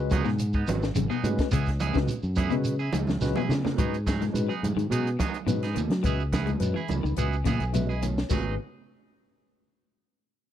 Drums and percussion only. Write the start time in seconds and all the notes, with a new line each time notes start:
0.10 kick, closed hi-hat, high conga, low conga, shekere
0.25 snare, shekere
0.39 closed hi-hat, high conga, shekere
0.53 kick, shekere
0.67 snare, closed hi-hat, high conga, shekere
0.82 snare, shekere
0.95 closed hi-hat, high conga, shekere
1.11 shekere
1.24 closed hi-hat, low conga, shekere
1.38 kick, snare, closed hi-hat, shekere
1.51 kick, closed hi-hat, high conga, shekere
1.66 kick, snare, closed hi-hat, shekere
1.80 closed hi-hat, high conga, shekere
1.94 kick, snare, low conga, shekere
2.08 closed hi-hat, high conga, shekere
2.23 shekere
2.36 kick, closed hi-hat, high conga, low conga, shekere
2.50 closed hi-hat, shekere
2.64 closed hi-hat, high conga, shekere
2.79 shekere
2.93 closed hi-hat, high conga, shekere
3.07 snare, high conga, shekere
3.21 snare, shekere
3.36 high conga, shekere
3.50 snare, low conga, shekere
3.65 snare, low conga, shekere
3.78 kick, closed hi-hat, high conga, shekere
3.94 closed hi-hat, shekere
4.07 kick, snare, closed hi-hat, high conga, shekere
4.22 snare, closed hi-hat, low conga, shekere
4.35 closed hi-hat, high conga, shekere
4.51 shekere
4.64 closed hi-hat, high conga, low conga, shekere
4.79 closed hi-hat, shekere
4.92 closed hi-hat, high conga, shekere
5.07 closed hi-hat, shekere
5.20 kick, snare, closed hi-hat, high conga, shekere
5.34 closed hi-hat, shekere
5.48 closed hi-hat, high conga, shekere
5.63 snare, closed hi-hat, shekere
5.76 closed hi-hat, low conga, shekere
5.90 snare, closed hi-hat, shekere
6.04 kick, closed hi-hat, high conga, shekere
6.20 shekere
6.33 kick, snare, closed hi-hat, high conga, shekere
6.47 closed hi-hat, low conga, shekere
6.60 closed hi-hat, high conga, shekere
6.77 shekere
6.88 closed hi-hat, high conga, low conga, shekere
7.05 shekere
7.16 closed hi-hat, high conga, shekere
7.33 shekere
7.45 kick, snare, closed hi-hat, high conga, shekere
7.60 closed hi-hat, shekere
7.74 closed hi-hat, high conga, shekere
7.90 shekere
8.02 closed hi-hat, low conga, shekere
8.18 snare, shekere
8.30 kick, crash, low conga, shekere